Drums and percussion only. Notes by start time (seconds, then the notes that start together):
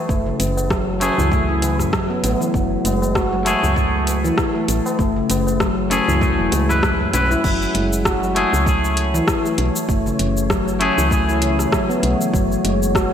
0.09 kick, shaker
0.40 closed hi-hat, tabla na, tabla tin, shaker
0.57 tabla na, shaker
0.70 kick, cross-stick, shaker
1.01 closed hi-hat, tabla tin, shaker
1.18 tabla ge, shaker
1.32 kick, shaker
1.62 closed hi-hat, tabla na, shaker
1.79 cross-stick, tabla ge, shaker
1.93 kick, cross-stick, tabla na, shaker
2.24 closed hi-hat, tabla na, shaker
2.42 shaker
2.54 kick, shaker
2.85 closed hi-hat, tabla na, tabla tin, shaker
3.02 tabla na, shaker
3.15 kick, cross-stick, shaker
3.46 closed hi-hat, tabla tin, shaker
3.63 tabla ge, shaker
3.76 kick, shaker
4.07 closed hi-hat, tabla tin, shaker
4.25 tabla tin, shaker
4.38 kick, cross-stick, shaker
4.56 tabla tin
4.68 closed hi-hat, shaker
4.86 tabla na, shaker
4.99 kick, shaker
5.30 closed hi-hat, tabla na, tabla tin, shaker
5.47 tabla na, shaker
5.60 kick, cross-stick, shaker
5.91 closed hi-hat, tabla tin, shaker
6.09 tabla ge, shaker
6.21 kick, shaker
6.52 closed hi-hat, tabla na, shaker
6.69 cross-stick, tabla ge, shaker
6.83 kick, cross-stick, tabla na, shaker
7.00 tabla ge
7.13 closed hi-hat, tabla na, shaker
7.32 shaker
7.44 kick, crash, shaker
7.62 shaker
7.75 closed hi-hat
7.93 shaker
8.05 kick, cross-stick, shaker
8.23 shaker
8.36 closed hi-hat
8.54 shaker
8.66 kick, shaker
8.84 shaker
8.97 closed hi-hat
9.15 shaker
9.28 kick, cross-stick, shaker
9.46 shaker
9.58 closed hi-hat
9.76 shaker
9.89 kick, shaker
10.07 shaker
10.19 closed hi-hat
10.37 shaker
10.50 kick, cross-stick, shaker
10.68 shaker
10.81 closed hi-hat
10.99 shaker
11.11 kick, shaker
11.29 shaker
11.42 closed hi-hat
11.59 cross-stick, shaker
11.72 kick, cross-stick, shaker
11.91 shaker
12.03 closed hi-hat
12.21 shaker
12.34 kick, shaker
12.52 shaker
12.65 closed hi-hat
12.83 shaker
12.95 kick, cross-stick, shaker